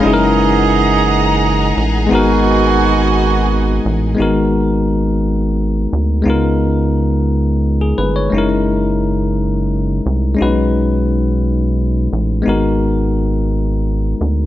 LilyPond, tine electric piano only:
\new Staff \with { instrumentName = "Tine electric piano" } { \time 6/8 \key gis \minor \tempo 4. = 58 << { r2. | r2. | r2. | r2 r16 gis'16 b'16 cis''16~ |
cis''16 r2 r8. | r2. | r2. | } \\ { <gis cis' dis' e' gis' ais'>2. | <gis b dis' fis' ais'>2. | <gis b dis' fis' ais'>2. | <gis b dis' eis' ais'>2. |
<gis cis' dis' e' ais'>2. | <gis cis' dis' fis' b'>2. | <gis b dis' fis' ais'>2. | } >> }